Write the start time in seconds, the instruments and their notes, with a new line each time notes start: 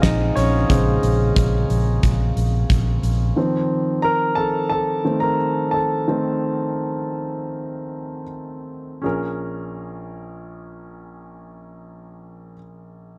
Already playing: grand piano C#3 G#3 C4 F4 G#4 A#4 F5 F#5 G#5 A#5
0.02 fingered electric bass A#1, grand piano D#4 D#5, kick, snare, closed hi-hat
0.36 fingered electric bass A#1, grand piano C#4 C#5, snare, closed hi-hat
0.69 fingered electric bass A#1, grand piano C#3 G#3 C5, kick, closed hi-hat
1.03 fingered electric bass A#1, closed hi-hat
1.36 fingered electric bass A#1, kick, closed hi-hat
1.70 fingered electric bass A#1, closed hi-hat
2.03 fingered electric bass A#1, kick, closed hi-hat
2.36 fingered electric bass A#1, closed hi-hat
2.70 fingered electric bass A#1, kick, closed hi-hat
3.03 fingered electric bass A#1, closed hi-hat
3.36 grand piano D#3 F3 C4
4.02 grand piano A#4 A#5
4.35 grand piano A4 A5
4.69 grand piano A4 A5
5.04 grand piano D#3 A3 C4
5.20 grand piano A#4 A#5
5.71 grand piano A4 A5
6.08 grand piano D#3 A3 C4
9.02 grand piano A#1 C#4 G#4
9.06 grand piano A#4